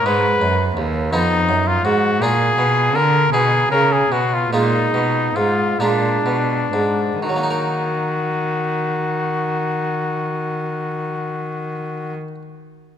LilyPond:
<<
  \new Staff \with { instrumentName = "Trumpet" } { \time 6/8 \key ees \minor \tempo 4. = 45 ces''4 r8 ees'8. f'16 ges'8 | aes'4 bes'8 aes'8 bes'16 aes'16 fis'16 f'16 | ees'4 f'8 d'4. | ges'2.~ |
ges'2. | }
  \new Staff \with { instrumentName = "Harpsichord" } { \clef bass \time 6/8 \key ees \minor << { aes8 r4 <ces' ees' f'>4. | <bes d' f'>4. dis'4. | <aes bes f'>4. <aes bes f'>4. | <ees ges bes ees' bes'>2.~ |
<ees ges bes ees' bes'>2. | } \\ { aes,8 ges,8 ees,8 f,8 ges,8 aes,8 | bes,8 ces8 d8 b,8 des8 b,8 | bes,8 ces8 aes,8 bes,8 ces8 aes,8 | r2. |
r2. | } >> }
  \new Staff \with { instrumentName = "Cello" } { \clef bass \time 6/8 \key ees \minor aes,8 ges,8 ees,8 f,8 ges,8 aes,8 | bes,8 ces8 d8 b,8 des8 b,8 | bes,8 ces8 aes,8 bes,8 ces8 aes,8 | ees2.~ |
ees2. | }
>>